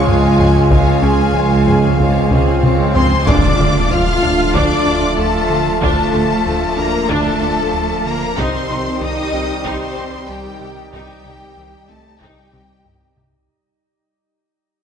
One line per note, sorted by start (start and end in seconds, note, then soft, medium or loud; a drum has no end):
0.00 3.26 C#2 medium
0.00 3.26 C#3 medium
0.00 2.92 F3 medium
0.00 2.91 G#3 medium
0.00 3.23 G#3 loud
0.00 2.95 C#4 medium
0.00 2.91 F4 medium
0.00 3.23 F4 loud
0.00 3.23 F5 loud
0.07 0.64 C#2 medium
0.07 0.27 C#2 medium
0.07 0.64 C#2 medium
0.07 0.40 G#3 medium
0.07 0.40 F4 medium
0.07 0.40 C#5 medium
0.07 0.40 F5 medium
0.07 0.70 G#5 loud
0.07 taiko low-mid medium
0.39 0.59 C#2 medium
0.39 0.58 F3 medium
0.39 0.72 C#4 medium
0.39 0.72 G#4 medium
0.39 0.73 G#4 medium
0.39 0.73 G#5 medium
0.39 taiko low-mid medium
0.70 0.91 C#2 loud
0.70 1.28 C#2 medium
0.70 0.90 C#3 loud
0.70 1.01 G#3 medium
0.70 1.01 F4 medium
0.70 1.02 C#5 medium
0.70 1.02 F5 medium
0.70 2.59 G#5 loud
0.70 taiko loud
0.70 swell medium
1.02 1.22 C#2 medium
1.02 1.22 C#4 medium
1.02 1.35 C#4 medium
1.02 1.35 G#4 medium
1.02 1.36 G#4 medium
1.02 1.36 G#5 medium
1.02 taiko rim soft
1.34 1.54 C#2 medium
1.34 1.92 C#2 medium
1.34 1.54 F3 medium
1.34 1.67 G#3 medium
1.34 1.67 F4 medium
1.34 1.69 C#5 medium
1.34 1.68 F5 medium
1.67 1.86 C#2 medium
1.67 1.86 F3 medium
1.67 1.99 C#4 medium
1.67 1.99 G#4 medium
1.67 2.00 G#4 medium
1.67 2.00 G#5 medium
1.67 taiko low-mid medium
1.98 2.56 C#2 medium
1.98 2.19 C#2 loud
1.98 2.18 C#3 loud
1.98 2.29 G#3 medium
1.98 2.29 F4 medium
1.98 2.29 C#5 medium
1.98 2.29 F5 medium
1.98 taiko medium
2.31 2.50 C#2 medium
2.31 2.50 C#4 medium
2.31 2.64 C#4 medium
2.31 2.64 G#4 medium
2.31 2.64 G#5 medium
2.31 taiko mid medium
2.63 2.95 C#2 medium
2.63 3.20 C#2 medium
2.63 2.83 C#2 medium
2.63 2.95 G#3 medium
2.63 2.95 F4 medium
2.63 2.95 C#5 medium
2.63 2.96 F5 medium
2.63 taiko mid loud
2.95 3.15 C#2 medium
2.95 3.28 C#3 medium
2.95 3.14 F3 medium
2.95 3.25 C4 medium
2.95 3.28 G#4 medium
2.95 3.26 C5 medium
2.95 3.28 G#5 medium
2.95 3.25 C6 loud
2.95 taiko low loud
3.26 8.40 D1 medium
3.26 3.35 D2 loud
3.26 3.47 D2 loud
3.26 3.46 D3 loud
3.26 8.34 F3 medium
3.26 8.34 F3 loud
3.26 8.34 A3 medium
3.26 3.90 D4 medium
3.26 8.34 D4 loud
3.26 3.57 D4 medium
3.26 8.34 F4 medium
3.26 8.34 F4 loud
3.26 3.92 D5 medium
3.26 8.34 F5 loud
3.26 3.92 D6 loud
3.26 taiko loud
3.26 impact loud
3.59 3.67 D2 medium
3.59 3.79 D3 medium
3.59 3.78 A3 medium
3.59 3.69 D4 medium
3.90 3.99 D2 medium
3.90 4.10 D2 medium
3.90 4.10 F3 medium
3.90 4.00 A3 medium
3.90 4.55 F4 loud
3.90 4.53 F5 loud
3.90 4.55 F6 loud
4.23 4.31 D2 medium
4.23 4.43 D2 medium
4.23 4.42 D4 medium
4.23 4.31 D4 medium
4.54 4.63 D2 loud
4.54 4.74 D2 loud
4.54 4.73 D3 loud
4.54 5.19 D4 loud
4.54 4.85 D4 loud
4.54 5.18 D5 loud
4.54 5.18 D6 loud
4.54 taiko loud
4.86 5.06 D2 medium
4.86 4.95 D2 medium
4.86 5.05 D4 medium
4.86 4.95 D4 medium
4.86 taiko rim soft
5.18 5.38 D2 medium
5.18 5.81 A3 loud
5.18 5.81 A4 loud
5.18 5.81 A5 loud
5.50 5.69 D3 medium
5.81 6.01 D2 loud
5.81 5.90 D2 loud
5.81 6.01 D3 loud
5.81 6.77 A3 loud
5.81 6.12 D4 loud
5.81 6.76 A4 loud
5.81 6.76 A5 loud
5.81 taiko loud
6.13 6.23 D2 medium
6.13 6.33 D3 medium
6.13 6.33 A3 medium
6.13 6.22 D4 medium
6.45 6.65 D2 medium
6.45 6.55 D2 medium
6.45 6.65 F3 medium
6.45 6.54 A3 medium
6.77 6.98 D2 medium
6.77 6.87 D2 medium
6.77 7.10 A#3 loud
6.77 6.96 D4 medium
6.77 6.86 D4 medium
6.77 7.10 A#4 loud
6.77 7.10 A#5 loud
7.08 7.29 D2 loud
7.08 7.19 D2 loud
7.08 7.29 D3 loud
7.08 8.06 A3 loud
7.08 7.39 D4 loud
7.08 8.05 A4 loud
7.08 8.06 A5 loud
7.08 taiko medium
7.42 7.61 D2 medium
7.42 7.51 D2 medium
7.42 7.61 D4 medium
7.42 7.51 D4 medium
7.74 7.93 D2 medium
8.05 8.25 D3 medium
8.05 8.38 A#3 loud
8.05 8.37 A#4 loud
8.05 8.39 A#5 loud
8.37 8.56 C2 loud
8.37 8.46 C2 loud
8.37 13.49 C2 medium
8.37 8.57 C3 loud
8.37 13.13 D#3 loud
8.37 13.13 G3 loud
8.37 13.49 G3 loud
8.37 9.01 C4 loud
8.37 13.13 C4 loud
8.37 8.67 D#4 loud
8.37 13.49 D#4 loud
8.37 13.29 G4 loud
8.37 13.13 G4 loud
8.37 13.49 G4 loud
8.37 9.02 C5 loud
8.37 13.49 D#5 loud
8.37 9.03 C6 loud
8.37 taiko loud
8.69 8.79 C2 medium
8.69 8.89 C3 medium
8.69 8.89 G3 medium
8.69 8.78 D#4 medium
8.69 taiko rim medium
9.01 9.21 C2 medium
9.01 9.11 C2 medium
9.01 9.21 D#3 medium
9.01 9.10 C4 medium
9.01 9.66 D#4 loud
9.01 9.66 D#5 loud
9.01 9.65 D#6 loud
9.33 9.52 C2 medium
9.33 9.42 C2 medium
9.33 9.52 C4 medium
9.33 9.42 D#4 medium
9.65 9.85 C2 loud
9.65 9.74 C2 loud
9.65 9.84 C3 loud
9.65 10.28 C4 loud
9.65 9.95 D#4 loud
9.65 10.29 C5 loud
9.65 10.30 C6 loud
9.65 taiko loud
9.97 10.17 C2 medium
9.97 10.06 C2 medium
9.97 10.17 C4 medium
9.97 10.06 D#4 medium
10.29 10.48 C2 medium
10.29 10.92 G3 loud
10.29 10.91 G4 loud
10.29 10.92 G5 loud
10.61 10.80 C3 medium
10.61 taiko rim medium
10.92 11.12 C2 loud
10.92 11.02 C2 loud
10.92 11.12 C3 loud
10.92 11.87 G3 loud
10.92 11.23 D#4 loud
10.92 11.87 G4 loud
10.92 11.87 G5 loud
10.92 taiko loud
11.24 11.33 C2 medium
11.24 11.44 C3 medium
11.24 11.44 G3 medium
11.24 11.32 D#4 medium
11.57 11.76 C2 medium
11.57 11.66 C2 medium
11.57 11.76 D#3 medium
11.57 11.65 C4 medium
11.88 12.08 C2 medium
11.88 11.98 C2 medium
11.88 12.21 A3 loud
11.88 12.08 C4 medium
11.88 11.96 D#4 medium
11.88 12.21 A4 loud
11.88 12.21 A5 loud
12.19 12.40 C2 loud
12.19 12.30 C2 loud
12.19 12.40 C3 loud
12.19 13.17 G3 medium
12.19 12.50 D#4 loud
12.19 13.16 G4 loud
12.19 13.17 G5 loud
12.19 taiko loud
12.52 12.72 C2 medium
12.52 12.62 C2 medium
12.52 12.72 C4 medium
12.52 12.60 D#4 medium
12.52 taiko mid loud
12.85 13.04 C2 medium
12.85 taiko low-mid loud
13.17 13.36 C3 medium
13.17 taiko low loud